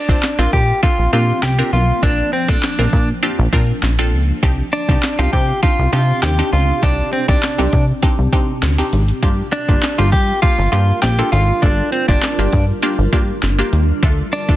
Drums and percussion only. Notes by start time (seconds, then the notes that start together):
0.09 kick
0.23 snare, clap
0.53 kick
0.83 kick
1.43 snare, clap
2.03 kick
2.49 kick
2.63 snare, clap
2.93 kick
3.53 kick
3.83 snare, clap
4.43 kick
4.89 kick
5.03 snare, clap
5.33 kick
5.63 kick
6.23 snare, clap
6.83 kick, closed hi-hat
7.13 closed hi-hat
7.29 kick, closed hi-hat
7.43 snare, clap, closed hi-hat
7.73 kick, closed hi-hat
8.02 kick, closed hi-hat
8.33 kick, closed hi-hat
8.63 snare, clap, closed hi-hat
8.93 closed hi-hat
9.08 closed hi-hat
9.23 kick, closed hi-hat
9.53 closed hi-hat
9.69 kick
9.83 snare, clap, closed hi-hat
10.13 kick, closed hi-hat
10.43 kick, closed hi-hat
10.73 closed hi-hat
11.03 snare, clap, closed hi-hat
11.33 closed hi-hat
11.63 kick, closed hi-hat
11.92 closed hi-hat
12.08 kick
12.22 snare, clap, closed hi-hat
12.52 kick, closed hi-hat
12.82 closed hi-hat
13.13 kick, closed hi-hat
13.43 snare, clap, closed hi-hat
13.73 closed hi-hat
14.03 kick, closed hi-hat
14.33 closed hi-hat
14.49 kick